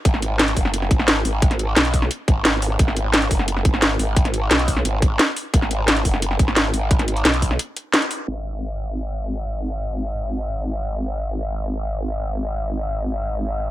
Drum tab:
CC |----------------|----------------|----------------|----------------|
HH |x-x-xxo-x-x-x-o-|xxx-xxo-x-x-x-o-|x-x-xxo-x-x-x-o-|xxx-xxo-x-x-x-o-|
SD |-o--o--o-o-oo---|-o--o--o----o---|-o--o--o-o-oo---|-o--o--o----o---|
BD |o-----o---o-----|o-----o---o-----|o-----o---o-----|o-----o---o-----|

CC |----------------|----------------|x---------------|----------------|
HH |x-x-xxo-x-x-x-o-|xxxxxxo-x-x-xxo-|----------------|----------------|
SD |-o--o--o-o-oo---|-o--o--o----o---|----------------|----------------|
BD |o-----o---o-----|o-----o---------|----------------|----------------|

CC |----------------|----------------|
HH |----------------|----------------|
SD |----------------|----------------|
BD |----------------|----------------|